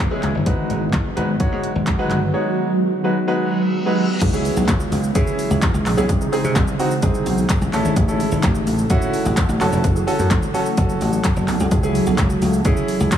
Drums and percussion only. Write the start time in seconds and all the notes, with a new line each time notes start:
0.23 clap, closed hi-hat
0.46 kick, closed hi-hat
0.70 closed hi-hat
0.93 kick, clap, closed hi-hat
1.17 closed hi-hat
1.40 kick, closed hi-hat
1.64 closed hi-hat
1.87 kick, clap, closed hi-hat
2.10 clap, closed hi-hat
4.21 kick, closed hi-hat, crash, shaker
4.33 shaker
4.45 open hi-hat, shaker
4.57 shaker
4.68 kick, clap, closed hi-hat, shaker
4.80 shaker
4.92 open hi-hat, shaker
5.04 shaker
5.15 kick, closed hi-hat, shaker
5.27 shaker
5.39 open hi-hat, shaker
5.51 shaker
5.62 kick, clap, closed hi-hat, shaker
5.75 shaker
5.86 clap, open hi-hat, shaker
5.98 shaker
6.09 kick, closed hi-hat, shaker
6.21 shaker
6.33 open hi-hat, shaker
6.44 shaker
6.56 kick, clap, closed hi-hat, shaker
6.68 shaker
6.80 open hi-hat, shaker
6.91 shaker
7.02 kick, closed hi-hat, shaker
7.14 shaker
7.26 open hi-hat, shaker
7.38 shaker
7.49 kick, clap, closed hi-hat, shaker
7.62 shaker
7.73 clap, open hi-hat, shaker
7.85 shaker
7.96 kick, closed hi-hat, shaker
8.09 shaker
8.20 open hi-hat, shaker
8.31 shaker
8.43 kick, clap, closed hi-hat, shaker
8.55 shaker
8.67 open hi-hat, shaker
8.78 shaker
8.90 kick, closed hi-hat, shaker
9.02 shaker
9.14 open hi-hat, shaker
9.26 shaker
9.37 kick, clap, closed hi-hat, shaker
9.49 shaker
9.61 clap, open hi-hat, shaker
9.73 shaker
9.84 kick, closed hi-hat, shaker
9.96 shaker
10.08 open hi-hat, shaker
10.19 shaker
10.31 kick, clap, closed hi-hat, shaker
10.43 shaker
10.55 open hi-hat, shaker
10.66 shaker
10.77 kick, closed hi-hat, shaker
10.89 shaker
11.01 open hi-hat, shaker
11.13 shaker
11.24 kick, clap, closed hi-hat, shaker
11.36 shaker
11.48 clap, open hi-hat, shaker
11.60 shaker
11.71 kick, closed hi-hat, shaker
11.83 shaker
11.95 open hi-hat, shaker
12.07 shaker
12.18 kick, clap, closed hi-hat, shaker
12.30 shaker
12.42 open hi-hat, shaker
12.53 shaker
12.65 kick, closed hi-hat, shaker
12.77 shaker
12.88 open hi-hat, shaker
13.00 shaker
13.12 kick, clap, closed hi-hat, shaker